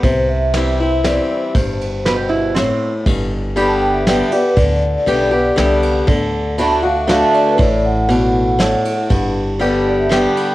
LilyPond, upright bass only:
\new Staff \with { instrumentName = "Upright bass" } { \clef bass \time 3/4 \key g \major \tempo 4 = 119 c,2. | g,,2. | g,,2. | d,4 b,,4 c,4 |
d,2. | a,,2. | g,,2. | }